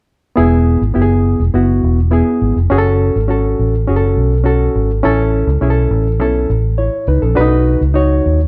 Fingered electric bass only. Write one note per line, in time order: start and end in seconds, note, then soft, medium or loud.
0.37 0.75 E1 medium
0.81 0.94 G#1 medium
0.96 1.34 F#1 medium
1.40 1.52 E1 medium
1.54 1.79 F#1 medium
1.83 2.21 E1 medium
2.42 2.54 G#1 medium
2.56 2.69 F1 medium
2.71 3.09 F#1 loud
3.16 3.53 G#1 medium
3.59 3.84 A1 medium
3.88 4.13 F#1 medium
4.17 4.67 B1 medium
4.75 5.00 G#1 medium
5.05 5.42 A1 loud
5.47 5.60 C#2 medium
5.62 5.87 B1 medium
5.91 6.19 A1 medium
6.19 6.45 B1 medium
6.50 6.88 A1 medium
7.07 7.20 C#2 medium
7.23 7.35 A#1 medium
7.38 7.76 B1 loud
7.81 8.19 C#2 medium
8.26 8.48 D#2 medium